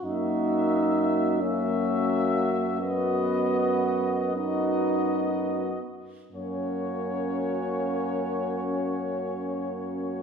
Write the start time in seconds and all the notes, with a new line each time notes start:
0.04 F#2 A#3 D#4 F#4 E5
1.40 A#3 C#4 F#4 E5
2.79 B3 F#4 D#5
4.34 B3 D#4 F#4 D#5
6.32 F#2 A#3 C#4 F#4 C#5